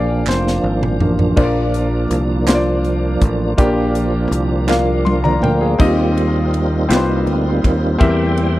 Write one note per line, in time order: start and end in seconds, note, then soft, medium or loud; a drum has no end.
0.00 0.23 A#1 medium
0.00 0.99 D3 soft
0.00 1.00 F3 soft
0.00 1.34 F3 medium
0.00 1.00 A#3 medium
0.00 1.35 A#3 medium
0.00 1.35 D4 medium
0.00 0.26 D5 medium
0.00 1.40 F5 medium
0.00 1.39 G5 medium
0.00 1.39 G#5 medium
0.27 0.61 F1 medium
0.27 0.97 C5 medium
0.27 snare medium
0.27 clap medium
0.47 snare soft
0.63 0.97 G#1 medium
0.83 mid tom medium
1.00 1.34 A1 medium
1.00 1.34 D3 soft
1.00 1.34 F3 soft
1.00 1.34 A#3 medium
1.00 floor tom medium
1.19 floor tom medium
1.36 2.07 A#1 medium
1.36 2.43 A#2 medium
1.36 3.53 F3 soft
1.36 3.53 A#3 soft
1.36 2.04 A#3 medium
1.36 2.04 D4 medium
1.36 3.54 D4 medium
1.36 2.04 F4 medium
1.36 1.44 C5 medium
1.36 kick loud
1.36 crash medium
1.44 2.07 D5 medium
1.74 closed hi-hat medium
2.10 3.17 C2 medium
2.10 closed hi-hat medium
2.47 3.14 A#3 medium
2.47 3.14 D4 medium
2.47 3.14 F4 medium
2.47 2.54 C5 medium
2.47 snare loud
2.47 clap medium
2.47 closed hi-hat medium
2.55 3.18 D5 medium
2.84 closed hi-hat soft
3.21 3.55 A1 medium
3.21 kick medium
3.21 closed hi-hat medium
3.56 4.28 A#1 medium
3.56 4.64 A#2 medium
3.56 5.74 F3 soft
3.56 5.75 A#3 soft
3.56 4.25 A#3 medium
3.56 4.25 D4 medium
3.56 5.75 D4 medium
3.56 4.25 F4 medium
3.56 4.25 G4 loud
3.56 kick loud
3.56 closed hi-hat medium
3.95 closed hi-hat medium
4.31 5.38 C2 medium
4.31 closed hi-hat medium
4.68 5.35 A#3 medium
4.68 5.35 D4 medium
4.68 5.35 F4 medium
4.68 5.05 F5 medium
4.68 snare medium
4.68 clap medium
5.05 5.23 C6 medium
5.05 high tom medium
5.24 5.42 D5 medium
5.24 5.41 A#5 medium
5.24 mid tom medium
5.42 5.76 D2 medium
5.42 5.60 A#4 medium
5.42 5.60 G5 medium
5.42 mid tom medium
5.61 5.96 G#4 soft
5.61 5.96 F5 medium
5.78 6.86 D#2 medium
5.78 6.86 D#3 medium
5.78 8.60 G3 medium
5.78 8.60 A#3 medium
5.78 6.46 C4 medium
5.78 8.60 C4 medium
5.78 7.98 D#4 medium
5.78 7.98 F4 medium
5.78 6.46 F4 medium
5.78 6.46 G4 medium
5.78 6.47 D#5 medium
5.78 kick loud
5.78 crash medium
6.17 ride medium
6.54 ride soft
6.89 7.24 C2 medium
6.89 7.56 C4 medium
6.89 7.56 F4 medium
6.89 7.57 G4 medium
6.89 6.96 B4 medium
6.89 snare loud
6.89 clap medium
6.89 ride medium
6.97 7.60 C5 medium
7.26 7.60 D2 medium
7.26 ride soft
7.64 7.98 D#2 medium
7.64 kick medium
7.64 ride medium
7.99 8.60 E2 medium
7.99 8.60 E3 medium
7.99 8.60 C4 medium
7.99 8.60 E4 medium
7.99 8.60 G4 medium
7.99 8.60 A#4 medium
7.99 8.60 E5 medium
7.99 8.60 G5 medium
7.99 kick loud
7.99 ride medium
8.37 ride soft